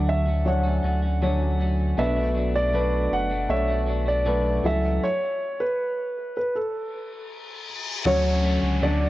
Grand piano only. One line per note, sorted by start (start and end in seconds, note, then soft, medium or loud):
0.09 0.48 E5 medium
0.48 1.57 F#5 medium
1.99 2.57 E5 medium
2.55 3.14 D5 loud
3.13 3.52 F#5 medium
3.50 4.09 E5 medium
4.08 4.66 D5 medium
4.66 5.04 E5 medium
5.03 5.61 C#5 medium
5.60 6.35 B4 medium
6.37 6.56 B4 medium
6.55 7.65 A4 medium
8.06 8.79 C#4 medium
8.06 8.84 C#5 medium
8.83 9.09 D4 medium
8.83 9.09 D5 medium